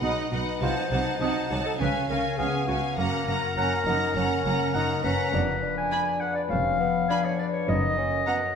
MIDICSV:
0, 0, Header, 1, 11, 480
1, 0, Start_track
1, 0, Key_signature, 6, "major"
1, 0, Tempo, 589391
1, 501, Time_signature, 4, 2, 24, 8
1, 6966, End_track
2, 0, Start_track
2, 0, Title_t, "Flute section"
2, 0, Program_c, 0, 73
2, 14, Note_on_c, 0, 83, 44
2, 102, Note_off_c, 0, 83, 0
2, 987, Note_on_c, 0, 81, 47
2, 1073, Note_off_c, 0, 81, 0
2, 1940, Note_on_c, 0, 80, 49
2, 2027, Note_off_c, 0, 80, 0
2, 2910, Note_on_c, 0, 82, 53
2, 2996, Note_off_c, 0, 82, 0
2, 3864, Note_on_c, 0, 82, 51
2, 3950, Note_off_c, 0, 82, 0
2, 4816, Note_on_c, 0, 83, 57
2, 4902, Note_off_c, 0, 83, 0
2, 5780, Note_on_c, 0, 83, 53
2, 5867, Note_off_c, 0, 83, 0
2, 6742, Note_on_c, 0, 82, 56
2, 6827, Note_off_c, 0, 82, 0
2, 6966, End_track
3, 0, Start_track
3, 0, Title_t, "Violin section"
3, 0, Program_c, 1, 48
3, 23, Note_on_c, 1, 78, 49
3, 250, Note_off_c, 1, 78, 0
3, 259, Note_on_c, 1, 78, 47
3, 496, Note_off_c, 1, 78, 0
3, 501, Note_on_c, 1, 81, 47
3, 730, Note_off_c, 1, 81, 0
3, 740, Note_on_c, 1, 81, 46
3, 977, Note_off_c, 1, 81, 0
3, 990, Note_on_c, 1, 81, 46
3, 1217, Note_off_c, 1, 81, 0
3, 1227, Note_on_c, 1, 81, 46
3, 1461, Note_off_c, 1, 81, 0
3, 1467, Note_on_c, 1, 80, 50
3, 1701, Note_off_c, 1, 80, 0
3, 1717, Note_on_c, 1, 80, 51
3, 1943, Note_off_c, 1, 80, 0
3, 1953, Note_on_c, 1, 80, 47
3, 2184, Note_off_c, 1, 80, 0
3, 2199, Note_on_c, 1, 80, 49
3, 2427, Note_on_c, 1, 82, 52
3, 2428, Note_off_c, 1, 80, 0
3, 2655, Note_off_c, 1, 82, 0
3, 2665, Note_on_c, 1, 82, 52
3, 2894, Note_off_c, 1, 82, 0
3, 2904, Note_on_c, 1, 82, 51
3, 3134, Note_off_c, 1, 82, 0
3, 3144, Note_on_c, 1, 82, 51
3, 3374, Note_off_c, 1, 82, 0
3, 3384, Note_on_c, 1, 82, 54
3, 3612, Note_off_c, 1, 82, 0
3, 3621, Note_on_c, 1, 82, 51
3, 3854, Note_off_c, 1, 82, 0
3, 3863, Note_on_c, 1, 82, 54
3, 4095, Note_off_c, 1, 82, 0
3, 4105, Note_on_c, 1, 82, 51
3, 4339, Note_off_c, 1, 82, 0
3, 4825, Note_on_c, 1, 83, 52
3, 4890, Note_off_c, 1, 83, 0
3, 5781, Note_on_c, 1, 83, 51
3, 5846, Note_off_c, 1, 83, 0
3, 6733, Note_on_c, 1, 82, 47
3, 6798, Note_off_c, 1, 82, 0
3, 6966, End_track
4, 0, Start_track
4, 0, Title_t, "Oboe"
4, 0, Program_c, 2, 68
4, 29, Note_on_c, 2, 75, 45
4, 159, Note_off_c, 2, 75, 0
4, 990, Note_on_c, 2, 75, 48
4, 1120, Note_off_c, 2, 75, 0
4, 1950, Note_on_c, 2, 77, 45
4, 2080, Note_off_c, 2, 77, 0
4, 2910, Note_on_c, 2, 78, 50
4, 3041, Note_off_c, 2, 78, 0
4, 3859, Note_on_c, 2, 78, 50
4, 3989, Note_off_c, 2, 78, 0
4, 4819, Note_on_c, 2, 80, 52
4, 4950, Note_off_c, 2, 80, 0
4, 5769, Note_on_c, 2, 80, 47
4, 5899, Note_off_c, 2, 80, 0
4, 6731, Note_on_c, 2, 78, 54
4, 6862, Note_off_c, 2, 78, 0
4, 6966, End_track
5, 0, Start_track
5, 0, Title_t, "Violin section"
5, 0, Program_c, 3, 48
5, 21, Note_on_c, 3, 75, 48
5, 241, Note_off_c, 3, 75, 0
5, 250, Note_on_c, 3, 75, 48
5, 491, Note_off_c, 3, 75, 0
5, 494, Note_on_c, 3, 78, 54
5, 732, Note_off_c, 3, 78, 0
5, 741, Note_on_c, 3, 78, 50
5, 972, Note_off_c, 3, 78, 0
5, 982, Note_on_c, 3, 78, 49
5, 1202, Note_off_c, 3, 78, 0
5, 1211, Note_on_c, 3, 78, 50
5, 1453, Note_off_c, 3, 78, 0
5, 1456, Note_on_c, 3, 77, 53
5, 1688, Note_off_c, 3, 77, 0
5, 1698, Note_on_c, 3, 77, 52
5, 1930, Note_off_c, 3, 77, 0
5, 1940, Note_on_c, 3, 77, 49
5, 2178, Note_off_c, 3, 77, 0
5, 2189, Note_on_c, 3, 77, 52
5, 2423, Note_off_c, 3, 77, 0
5, 2436, Note_on_c, 3, 78, 62
5, 2661, Note_off_c, 3, 78, 0
5, 2670, Note_on_c, 3, 78, 49
5, 2901, Note_off_c, 3, 78, 0
5, 2911, Note_on_c, 3, 78, 54
5, 3137, Note_off_c, 3, 78, 0
5, 3147, Note_on_c, 3, 78, 51
5, 3377, Note_off_c, 3, 78, 0
5, 3387, Note_on_c, 3, 78, 57
5, 3610, Note_off_c, 3, 78, 0
5, 3620, Note_on_c, 3, 78, 53
5, 3852, Note_off_c, 3, 78, 0
5, 3861, Note_on_c, 3, 78, 50
5, 4094, Note_off_c, 3, 78, 0
5, 4104, Note_on_c, 3, 78, 55
5, 4339, Note_off_c, 3, 78, 0
5, 4820, Note_on_c, 3, 80, 53
5, 4886, Note_off_c, 3, 80, 0
5, 5792, Note_on_c, 3, 80, 52
5, 5857, Note_off_c, 3, 80, 0
5, 6745, Note_on_c, 3, 78, 52
5, 6810, Note_off_c, 3, 78, 0
5, 6966, End_track
6, 0, Start_track
6, 0, Title_t, "Clarinet"
6, 0, Program_c, 4, 71
6, 0, Note_on_c, 4, 68, 71
6, 225, Note_off_c, 4, 68, 0
6, 511, Note_on_c, 4, 72, 79
6, 1196, Note_off_c, 4, 72, 0
6, 1230, Note_on_c, 4, 73, 62
6, 1344, Note_off_c, 4, 73, 0
6, 1352, Note_on_c, 4, 69, 62
6, 1405, Note_off_c, 4, 69, 0
6, 1475, Note_on_c, 4, 71, 71
6, 1581, Note_off_c, 4, 71, 0
6, 1709, Note_on_c, 4, 70, 64
6, 1936, Note_on_c, 4, 68, 69
6, 1948, Note_off_c, 4, 70, 0
6, 2176, Note_off_c, 4, 68, 0
6, 2181, Note_on_c, 4, 66, 64
6, 2290, Note_off_c, 4, 66, 0
6, 2430, Note_on_c, 4, 70, 86
6, 4074, Note_off_c, 4, 70, 0
6, 4101, Note_on_c, 4, 71, 90
6, 4688, Note_off_c, 4, 71, 0
6, 4705, Note_on_c, 4, 80, 89
6, 5054, Note_on_c, 4, 78, 80
6, 5066, Note_off_c, 4, 80, 0
6, 5165, Note_off_c, 4, 78, 0
6, 5170, Note_on_c, 4, 74, 73
6, 5226, Note_off_c, 4, 74, 0
6, 5295, Note_on_c, 4, 77, 95
6, 5902, Note_on_c, 4, 73, 82
6, 5914, Note_off_c, 4, 77, 0
6, 6011, Note_off_c, 4, 73, 0
6, 6016, Note_on_c, 4, 74, 81
6, 6070, Note_off_c, 4, 74, 0
6, 6134, Note_on_c, 4, 73, 82
6, 6254, Note_off_c, 4, 73, 0
6, 6260, Note_on_c, 4, 75, 93
6, 6964, Note_off_c, 4, 75, 0
6, 6966, End_track
7, 0, Start_track
7, 0, Title_t, "Bassoon"
7, 0, Program_c, 5, 70
7, 26, Note_on_c, 5, 63, 59
7, 495, Note_off_c, 5, 63, 0
7, 510, Note_on_c, 5, 65, 63
7, 616, Note_off_c, 5, 65, 0
7, 742, Note_on_c, 5, 63, 61
7, 1467, Note_on_c, 5, 61, 51
7, 1479, Note_off_c, 5, 63, 0
7, 1937, Note_off_c, 5, 61, 0
7, 1942, Note_on_c, 5, 59, 58
7, 2414, Note_off_c, 5, 59, 0
7, 2428, Note_on_c, 5, 58, 66
7, 2734, Note_off_c, 5, 58, 0
7, 2911, Note_on_c, 5, 61, 62
7, 3133, Note_off_c, 5, 61, 0
7, 3146, Note_on_c, 5, 63, 63
7, 3381, Note_off_c, 5, 63, 0
7, 3390, Note_on_c, 5, 61, 60
7, 3857, Note_off_c, 5, 61, 0
7, 3871, Note_on_c, 5, 63, 64
7, 4113, Note_on_c, 5, 61, 66
7, 4126, Note_off_c, 5, 63, 0
7, 4348, Note_off_c, 5, 61, 0
7, 4353, Note_on_c, 5, 62, 71
7, 4458, Note_off_c, 5, 62, 0
7, 4588, Note_on_c, 5, 62, 67
7, 5294, Note_on_c, 5, 61, 59
7, 5306, Note_off_c, 5, 62, 0
7, 5536, Note_off_c, 5, 61, 0
7, 5540, Note_on_c, 5, 59, 68
7, 5774, Note_off_c, 5, 59, 0
7, 5782, Note_on_c, 5, 62, 66
7, 6262, Note_on_c, 5, 63, 73
7, 6275, Note_off_c, 5, 62, 0
7, 6499, Note_on_c, 5, 61, 62
7, 6512, Note_off_c, 5, 63, 0
7, 6738, Note_off_c, 5, 61, 0
7, 6744, Note_on_c, 5, 59, 61
7, 6850, Note_off_c, 5, 59, 0
7, 6966, End_track
8, 0, Start_track
8, 0, Title_t, "Harp"
8, 0, Program_c, 6, 46
8, 0, Note_on_c, 6, 47, 53
8, 0, Note_on_c, 6, 54, 40
8, 0, Note_on_c, 6, 59, 39
8, 0, Note_on_c, 6, 71, 44
8, 26, Note_on_c, 6, 66, 43
8, 258, Note_off_c, 6, 71, 0
8, 268, Note_on_c, 6, 71, 45
8, 506, Note_on_c, 6, 48, 50
8, 523, Note_off_c, 6, 59, 0
8, 524, Note_off_c, 6, 47, 0
8, 524, Note_off_c, 6, 71, 0
8, 745, Note_on_c, 6, 57, 41
8, 977, Note_off_c, 6, 66, 0
8, 986, Note_on_c, 6, 66, 41
8, 1224, Note_on_c, 6, 69, 42
8, 1465, Note_on_c, 6, 49, 56
8, 1483, Note_off_c, 6, 69, 0
8, 1484, Note_off_c, 6, 57, 0
8, 1485, Note_off_c, 6, 66, 0
8, 1486, Note_off_c, 6, 48, 0
8, 1486, Note_off_c, 6, 54, 0
8, 1707, Note_on_c, 6, 61, 42
8, 1947, Note_on_c, 6, 68, 50
8, 2185, Note_on_c, 6, 73, 49
8, 2423, Note_on_c, 6, 42, 53
8, 2445, Note_off_c, 6, 49, 0
8, 2446, Note_off_c, 6, 68, 0
8, 2666, Note_on_c, 6, 58, 47
8, 2907, Note_on_c, 6, 66, 42
8, 3149, Note_on_c, 6, 70, 50
8, 3387, Note_on_c, 6, 49, 51
8, 3618, Note_off_c, 6, 58, 0
8, 3628, Note_on_c, 6, 58, 49
8, 3854, Note_off_c, 6, 66, 0
8, 3864, Note_on_c, 6, 66, 50
8, 4095, Note_off_c, 6, 70, 0
8, 4105, Note_on_c, 6, 70, 51
8, 4343, Note_on_c, 6, 41, 59
8, 4362, Note_off_c, 6, 42, 0
8, 4362, Note_off_c, 6, 66, 0
8, 4363, Note_off_c, 6, 49, 0
8, 4363, Note_off_c, 6, 70, 0
8, 4363, Note_off_c, 6, 73, 0
8, 4364, Note_off_c, 6, 58, 0
8, 4364, Note_off_c, 6, 61, 0
8, 4582, Note_on_c, 6, 59, 45
8, 4825, Note_on_c, 6, 68, 51
8, 5063, Note_on_c, 6, 71, 49
8, 5305, Note_on_c, 6, 53, 51
8, 5529, Note_off_c, 6, 59, 0
8, 5539, Note_on_c, 6, 59, 43
8, 5769, Note_off_c, 6, 68, 0
8, 5779, Note_on_c, 6, 68, 53
8, 6013, Note_off_c, 6, 71, 0
8, 6022, Note_on_c, 6, 71, 48
8, 6259, Note_on_c, 6, 42, 56
8, 6277, Note_off_c, 6, 41, 0
8, 6278, Note_off_c, 6, 59, 0
8, 6278, Note_off_c, 6, 68, 0
8, 6280, Note_off_c, 6, 53, 0
8, 6280, Note_off_c, 6, 71, 0
8, 6502, Note_on_c, 6, 58, 43
8, 6734, Note_on_c, 6, 66, 46
8, 6966, Note_off_c, 6, 42, 0
8, 6966, Note_off_c, 6, 58, 0
8, 6966, Note_off_c, 6, 66, 0
8, 6966, End_track
9, 0, Start_track
9, 0, Title_t, "Viola section"
9, 0, Program_c, 7, 48
9, 20, Note_on_c, 7, 63, 52
9, 245, Note_off_c, 7, 63, 0
9, 255, Note_on_c, 7, 63, 46
9, 488, Note_off_c, 7, 63, 0
9, 498, Note_on_c, 7, 63, 52
9, 731, Note_off_c, 7, 63, 0
9, 740, Note_on_c, 7, 63, 49
9, 972, Note_off_c, 7, 63, 0
9, 982, Note_on_c, 7, 63, 53
9, 1214, Note_off_c, 7, 63, 0
9, 1224, Note_on_c, 7, 63, 55
9, 1459, Note_off_c, 7, 63, 0
9, 1462, Note_on_c, 7, 61, 52
9, 1694, Note_off_c, 7, 61, 0
9, 1704, Note_on_c, 7, 61, 50
9, 1935, Note_off_c, 7, 61, 0
9, 1945, Note_on_c, 7, 61, 54
9, 2175, Note_off_c, 7, 61, 0
9, 2185, Note_on_c, 7, 61, 44
9, 2419, Note_off_c, 7, 61, 0
9, 2429, Note_on_c, 7, 61, 59
9, 2653, Note_off_c, 7, 61, 0
9, 2663, Note_on_c, 7, 61, 53
9, 2888, Note_off_c, 7, 61, 0
9, 2898, Note_on_c, 7, 61, 53
9, 3125, Note_off_c, 7, 61, 0
9, 3135, Note_on_c, 7, 61, 56
9, 3366, Note_off_c, 7, 61, 0
9, 3375, Note_on_c, 7, 61, 52
9, 3608, Note_off_c, 7, 61, 0
9, 3618, Note_on_c, 7, 61, 59
9, 3845, Note_off_c, 7, 61, 0
9, 3854, Note_on_c, 7, 61, 59
9, 4078, Note_off_c, 7, 61, 0
9, 4088, Note_on_c, 7, 61, 49
9, 4331, Note_off_c, 7, 61, 0
9, 4812, Note_on_c, 7, 62, 52
9, 4877, Note_off_c, 7, 62, 0
9, 5779, Note_on_c, 7, 62, 57
9, 5844, Note_off_c, 7, 62, 0
9, 6738, Note_on_c, 7, 61, 49
9, 6803, Note_off_c, 7, 61, 0
9, 6966, End_track
10, 0, Start_track
10, 0, Title_t, "Cello section"
10, 0, Program_c, 8, 48
10, 18, Note_on_c, 8, 47, 53
10, 83, Note_off_c, 8, 47, 0
10, 255, Note_on_c, 8, 47, 54
10, 320, Note_off_c, 8, 47, 0
10, 495, Note_on_c, 8, 48, 59
10, 561, Note_off_c, 8, 48, 0
10, 748, Note_on_c, 8, 48, 55
10, 813, Note_off_c, 8, 48, 0
10, 981, Note_on_c, 8, 48, 63
10, 1046, Note_off_c, 8, 48, 0
10, 1223, Note_on_c, 8, 48, 53
10, 1288, Note_off_c, 8, 48, 0
10, 1465, Note_on_c, 8, 49, 62
10, 1530, Note_off_c, 8, 49, 0
10, 1708, Note_on_c, 8, 49, 53
10, 1773, Note_off_c, 8, 49, 0
10, 1948, Note_on_c, 8, 49, 52
10, 2013, Note_off_c, 8, 49, 0
10, 2182, Note_on_c, 8, 49, 60
10, 2247, Note_off_c, 8, 49, 0
10, 2430, Note_on_c, 8, 42, 61
10, 2495, Note_off_c, 8, 42, 0
10, 2666, Note_on_c, 8, 42, 58
10, 2731, Note_off_c, 8, 42, 0
10, 2908, Note_on_c, 8, 42, 60
10, 2974, Note_off_c, 8, 42, 0
10, 3152, Note_on_c, 8, 42, 60
10, 3218, Note_off_c, 8, 42, 0
10, 3387, Note_on_c, 8, 42, 63
10, 3452, Note_off_c, 8, 42, 0
10, 3626, Note_on_c, 8, 42, 60
10, 3691, Note_off_c, 8, 42, 0
10, 3869, Note_on_c, 8, 42, 58
10, 3934, Note_off_c, 8, 42, 0
10, 4106, Note_on_c, 8, 42, 58
10, 4171, Note_off_c, 8, 42, 0
10, 4342, Note_on_c, 8, 41, 72
10, 4720, Note_off_c, 8, 41, 0
10, 5301, Note_on_c, 8, 41, 73
10, 5679, Note_off_c, 8, 41, 0
10, 6263, Note_on_c, 8, 42, 74
10, 6640, Note_off_c, 8, 42, 0
10, 6966, End_track
11, 0, Start_track
11, 0, Title_t, "Double bass section"
11, 0, Program_c, 10, 48
11, 24, Note_on_c, 10, 35, 51
11, 89, Note_off_c, 10, 35, 0
11, 263, Note_on_c, 10, 35, 49
11, 328, Note_off_c, 10, 35, 0
11, 508, Note_on_c, 10, 36, 54
11, 574, Note_off_c, 10, 36, 0
11, 746, Note_on_c, 10, 36, 54
11, 811, Note_off_c, 10, 36, 0
11, 986, Note_on_c, 10, 36, 51
11, 1051, Note_off_c, 10, 36, 0
11, 1233, Note_on_c, 10, 36, 50
11, 1298, Note_off_c, 10, 36, 0
11, 1473, Note_on_c, 10, 37, 57
11, 1538, Note_off_c, 10, 37, 0
11, 1707, Note_on_c, 10, 37, 53
11, 1772, Note_off_c, 10, 37, 0
11, 1947, Note_on_c, 10, 37, 54
11, 2012, Note_off_c, 10, 37, 0
11, 2188, Note_on_c, 10, 37, 53
11, 2253, Note_off_c, 10, 37, 0
11, 2428, Note_on_c, 10, 30, 59
11, 2493, Note_off_c, 10, 30, 0
11, 2664, Note_on_c, 10, 30, 57
11, 2729, Note_off_c, 10, 30, 0
11, 2910, Note_on_c, 10, 30, 51
11, 2975, Note_off_c, 10, 30, 0
11, 3144, Note_on_c, 10, 30, 48
11, 3209, Note_off_c, 10, 30, 0
11, 3386, Note_on_c, 10, 30, 65
11, 3451, Note_off_c, 10, 30, 0
11, 3626, Note_on_c, 10, 30, 60
11, 3692, Note_off_c, 10, 30, 0
11, 3868, Note_on_c, 10, 30, 53
11, 3933, Note_off_c, 10, 30, 0
11, 4104, Note_on_c, 10, 30, 60
11, 4170, Note_off_c, 10, 30, 0
11, 4343, Note_on_c, 10, 29, 78
11, 4721, Note_off_c, 10, 29, 0
11, 5299, Note_on_c, 10, 29, 73
11, 5678, Note_off_c, 10, 29, 0
11, 6263, Note_on_c, 10, 30, 71
11, 6640, Note_off_c, 10, 30, 0
11, 6966, End_track
0, 0, End_of_file